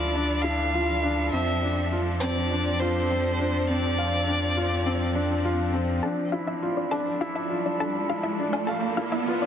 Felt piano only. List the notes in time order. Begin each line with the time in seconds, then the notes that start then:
Already playing: D4 E4 F4 F5
0.15 D4
0.44 E4
0.74 F4
1.03 D4
1.33 C4
1.62 D4
1.92 F4
2.22 C4
2.51 D4
2.81 F4
3.10 C4
3.40 D4
3.69 C4
3.98 F5
4.28 D4
4.57 F4
4.86 C4
5.15 D4
5.45 F4
5.74 C4
6.04 D4
6.33 E4
6.62 F4
6.91 D4
7.21 E4
7.50 F4
7.79 D4
8.10 E4
8.39 D4
8.68 F5
8.98 E4
9.28 F4